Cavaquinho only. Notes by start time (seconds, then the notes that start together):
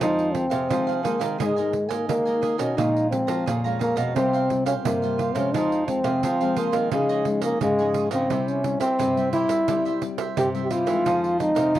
0.00 D#4 G#4 C5 F5
0.35 muted cavaquinho stroke
0.50 G#4 C5 F5
0.69 D#4 G#4 C5 F5
0.87 G#4 C5 F5
1.03 D#4 G#4 C5 F5
1.19 G#4 C5 F5
1.38 G#4 A#4 D#5 G#5
1.56 A#4 D#5 G#5
1.72 muted cavaquinho stroke
1.89 A#4 D#5 G#5
2.25 A#4 D#5 G#5
2.41 G#4 A#4 D#5 G#5
2.58 A#4 D#5 G#5
2.77 G#4 C#5 F5 A#5
3.11 muted cavaquinho stroke
3.27 C#5 F5 A#5
3.46 G#4 C#5 F5 A#5
3.64 C#5 F5 A#5
3.79 G#4 C#5 F5 A#5
3.96 C#5 F5 A#5
4.15 F4 G4 C5 F5
4.33 G4 C5 F5
4.50 muted cavaquinho stroke
4.66 G4 C5 F5
5.02 G4 C5 F5
5.18 F4 G4 C5 F5
5.35 G4 C5 F5
5.54 F4 G#4 C5 F5
5.88 muted cavaquinho stroke
6.04 G#4 C5 F5
6.23 F4 G#4 C5 F5
6.40 G#4 C5 F5
6.56 F4 G#4 C5 F5
6.72 G#4 C5 F5
6.91 F4 G#4 C#5 D#5
7.09 G#4 C#5 D#5
7.26 muted cavaquinho stroke
7.41 G#4 C#5 D#5
7.78 G#4 C#5 D#5
7.94 F4 G#4 C#5 D#5
8.11 G#4 C#5 D#5
8.30 E4 G4 C5 E5
8.64 muted cavaquinho stroke
8.80 G4 C5 E5
8.99 E4 G4 C5 E5
9.17 G4 C5 E5
9.33 E4 G4 C5 E5
9.49 G4 C5 E5
9.68 E4 G4 C5 E5
9.85 G4 C5 E5
10.02 muted cavaquinho stroke
10.18 G4 C5 E5
10.55 G4 C5 E5
10.70 E4 G4 C5 E5
10.86 G4 C5 E5
11.05 D#4 G#4 C5 F5
11.39 muted cavaquinho stroke
11.55 G#4 C5 F5
11.74 D#4 G#4 C5 F5